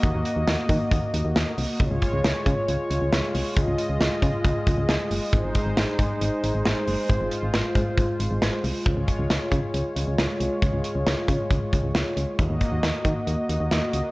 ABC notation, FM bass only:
X:1
M:4/4
L:1/16
Q:1/4=136
K:Db
V:1 name="FM bass" clef=bass
E,, E,, z E,, E,, z E, z E,, z E,, E,, E,, z C,, z | D,, D,, z D,, D,, z D, z D,, z D,, D,, D,, z C,, z | D,, D,, z D,, D,, z D, z D,, z D,, D,, D,, z G,,, z | A,,, A,,, z A,,, A,,, z A,, z A,,, z A,,, A,,, A,,, z G,,, z |
A,,, A,,, z A,,, A,,, z A,, z A,,, z A,,, A,,, A,,, z C,, z | D,, D,, z D,, D,, z D, z D,, z D,, D,, D,, z C,, z | D,, D,, z D,, D,, z D, z D,, z D,, D,, D,, z D,, z | E,, E,, z E,, E,, z E, z E,, z E,, E,, E,, z D,, z |]